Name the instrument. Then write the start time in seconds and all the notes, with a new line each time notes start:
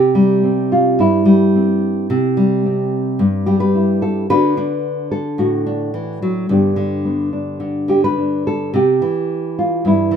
nylon-string guitar
Already playing: C3 G4
0.15 G3
0.44 C4
0.72 F4
0.99 G2 E4
1.25 G3
1.55 C4
2.10 C3
2.37 G3
2.66 C4
3.19 G2
3.46 G3 G4
3.60 B4
3.75 E4
4.02 A4
4.30 D3 D4 F#4 B4
4.57 D4
5.11 A4
5.38 A2 F#4
5.66 D4
5.94 E3
6.22 F#3
6.49 G2 D3 B3 D4 G4
6.76 D3
7.05 B3
7.33 D4
7.60 D3
7.88 D3 G4
8.04 B4
8.18 D4
8.47 A4
8.74 C3 G4
9.02 E3
9.59 F4
9.85 G2 E4
10.11 E3